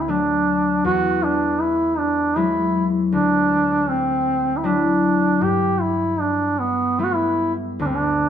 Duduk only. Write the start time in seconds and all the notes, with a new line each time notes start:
0.01 E4
0.10 D4
0.85 F#4
1.24 D4
1.61 E4
1.98 D4
2.37 E4
3.13 D4
3.90 C4
4.57 E4
4.66 D4
5.43 G4
5.81 E4
6.20 D4
6.60 B3
7.00 E4
7.04 F#4
7.15 E4
7.81 D4
7.86 C4
7.96 D4